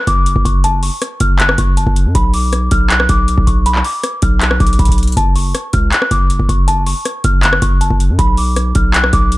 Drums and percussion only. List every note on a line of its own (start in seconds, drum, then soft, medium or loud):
0.07 kick loud
0.07 closed hi-hat medium
0.26 closed hi-hat medium
0.36 kick loud
0.45 kick medium
0.45 closed hi-hat medium
0.64 closed hi-hat medium
0.83 open hi-hat medium
1.02 cross-stick medium
1.02 closed hi-hat medium
1.20 kick loud
1.20 closed hi-hat medium
1.39 clap loud
1.39 closed hi-hat medium
1.49 cross-stick loud
1.58 kick loud
1.58 closed hi-hat medium
1.77 closed hi-hat medium
1.87 kick medium
1.96 closed hi-hat medium
2.15 kick loud
2.15 closed hi-hat medium
2.34 open hi-hat medium
2.53 cross-stick medium
2.53 closed hi-hat medium
2.71 kick loud
2.71 closed hi-hat medium
2.90 clap loud
2.90 closed hi-hat medium
3.00 cross-stick loud
3.09 kick loud
3.09 closed hi-hat medium
3.28 closed hi-hat medium
3.38 kick loud
3.47 kick medium
3.47 closed hi-hat medium
3.66 closed hi-hat medium
3.75 clap medium
3.84 open hi-hat medium
4.03 cross-stick medium
4.03 closed hi-hat medium
4.22 kick loud
4.22 closed hi-hat medium
4.41 clap loud
4.41 closed hi-hat medium
4.51 cross-stick loud
4.60 kick loud
4.60 closed hi-hat medium
4.67 closed hi-hat medium
4.73 closed hi-hat medium
4.79 kick medium
4.79 closed hi-hat medium
4.85 kick medium
4.85 closed hi-hat medium
4.92 closed hi-hat medium
4.98 closed hi-hat medium
5.03 closed hi-hat medium
5.07 closed hi-hat medium
5.12 closed hi-hat medium
5.17 kick loud
5.17 closed hi-hat loud
5.36 open hi-hat medium
5.55 cross-stick medium
5.55 closed hi-hat medium
5.73 kick loud
5.73 closed hi-hat medium
5.92 clap loud
5.92 closed hi-hat medium
6.02 cross-stick loud
6.11 kick loud
6.11 closed hi-hat medium
6.30 closed hi-hat medium
6.40 kick loud
6.49 kick medium
6.49 closed hi-hat medium
6.68 closed hi-hat medium
6.86 open hi-hat medium
7.05 cross-stick medium
7.05 closed hi-hat medium
7.24 kick loud
7.24 closed hi-hat medium
7.43 clap loud
7.43 closed hi-hat medium
7.53 cross-stick loud
7.62 kick loud
7.62 closed hi-hat medium
7.81 closed hi-hat medium
7.90 kick medium
8.00 closed hi-hat medium
8.19 kick loud
8.19 closed hi-hat medium
8.37 open hi-hat medium
8.56 cross-stick medium
8.56 closed hi-hat medium
8.75 kick loud
8.75 closed hi-hat medium
8.94 clap loud
8.94 closed hi-hat medium
9.04 cross-stick loud
9.13 kick loud
9.13 closed hi-hat medium
9.32 closed hi-hat medium